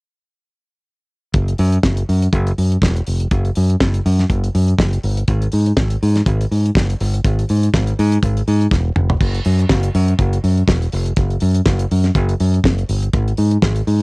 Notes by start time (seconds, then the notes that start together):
1.34 F#1, kick, closed hi-hat
1.48 closed hi-hat
1.58 F#2, open hi-hat
1.72 closed hi-hat
1.83 F#1, kick, snare
1.97 closed hi-hat
2.09 F#2, open hi-hat
2.22 closed hi-hat
2.33 F#1, kick, closed hi-hat
2.47 closed hi-hat
2.58 F#2, open hi-hat
2.72 closed hi-hat
2.82 E1, kick, snare
2.96 closed hi-hat
3.07 F1, open hi-hat
3.20 closed hi-hat
3.31 F#1, kick, closed hi-hat
3.45 closed hi-hat
3.55 F#2, open hi-hat
3.70 closed hi-hat
3.80 F#1, kick, snare
3.94 closed hi-hat
4.06 F#2, open hi-hat
4.19 snare, closed hi-hat
4.30 F#1, kick, closed hi-hat
4.44 closed hi-hat
4.55 F#2, open hi-hat
4.68 closed hi-hat
4.78 F#1, kick, snare
4.93 closed hi-hat
5.03 G1, open hi-hat
5.17 closed hi-hat
5.28 G#1, kick, closed hi-hat
5.42 closed hi-hat
5.52 G#2, open hi-hat
5.66 closed hi-hat
5.77 G#1, kick, snare
5.90 closed hi-hat
6.03 G#2, open hi-hat
6.16 snare, closed hi-hat
6.26 G#1, kick, closed hi-hat
6.41 closed hi-hat
6.51 G#2, open hi-hat
6.66 closed hi-hat
6.75 F#1, kick, snare
6.90 closed hi-hat
7.00 G1, open hi-hat
7.14 closed hi-hat
7.25 G#1, kick, closed hi-hat
7.39 closed hi-hat
7.49 G#2, open hi-hat
7.63 closed hi-hat
7.74 G#1, kick, snare
7.87 closed hi-hat
7.99 G#2, open hi-hat
8.12 closed hi-hat
8.23 G#1, kick, closed hi-hat
8.37 closed hi-hat
8.48 G#2, open hi-hat
8.61 closed hi-hat
8.71 E1, kick, snare
8.96 F1, mid tom
9.10 floor tom
9.20 F#1, kick, crash
9.35 closed hi-hat
9.45 F#2, open hi-hat
9.59 closed hi-hat
9.69 F#1, kick, snare
9.83 closed hi-hat
9.95 F#2, open hi-hat
10.08 closed hi-hat
10.19 F#1, kick, closed hi-hat
10.33 closed hi-hat
10.44 F#2, open hi-hat
10.57 closed hi-hat
10.68 E1, kick, snare
10.82 closed hi-hat
10.92 F1, open hi-hat
11.06 closed hi-hat
11.16 F#1, kick, closed hi-hat
11.30 closed hi-hat
11.40 F#2, open hi-hat
11.54 closed hi-hat
11.66 F#1, kick, snare
11.79 closed hi-hat
11.91 F#2, open hi-hat
12.04 snare, closed hi-hat
12.15 F#1, kick, closed hi-hat
12.29 closed hi-hat
12.40 F#2, open hi-hat
12.54 closed hi-hat
12.64 F#1, kick, snare
12.78 closed hi-hat
12.89 G1, open hi-hat
13.03 closed hi-hat
13.13 G#1, kick, closed hi-hat
13.28 closed hi-hat
13.37 G#2, open hi-hat
13.51 closed hi-hat
13.62 G#1, kick, snare
13.76 closed hi-hat
13.87 G#2, open hi-hat